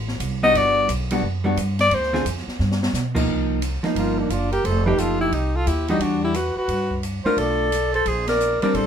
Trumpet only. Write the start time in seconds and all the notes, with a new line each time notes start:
3.96 A#4
4.19 D4
4.31 F4
4.52 A#4
4.65 C5
4.85 B4
4.99 A4
5.20 G4
5.33 G4
5.55 A4
5.68 G4
5.89 G4
6.02 F#4
6.23 G4
6.35 B4
6.57 B4
7.25 C5
7.39 D5
7.94 C5
8.07 C5
8.28 D5
8.61 D5
8.75 C5